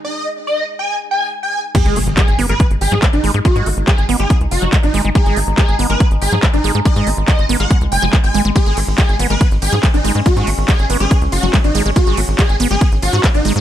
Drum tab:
CC |----------------|x---------------|----------------|----------------|
RD |----------------|----------------|----------------|----------------|
HH |----------------|xxoxxxoxxxoxxxox|xxoxxxoxxxoxxxox|xxoxxxoxxxoxxxox|
CP |----------------|----x-------x---|----x-------x---|----x-------x---|
BD |----------------|o---o---o---o---|o---o---o---o---|o---o---o---o---|

CC |----------------|----------------|----------------|----------------|
RD |----------------|x-x-x-x-x-x-x-x-|x-x-x-x-x-x-x-x-|x-x-x-x-x-x-x-x-|
HH |xxoxxxoxxxo-xxox|xxoxxxoxxxoxxxox|xxoxxxoxxxoxxxox|xxoxxxoxxxoxxxox|
CP |----x-------x---|----x-------x---|----x-------x---|----x-------x---|
BD |o---o---o---o---|o---o---o---o---|o---o---o---o---|o---o---o---o---|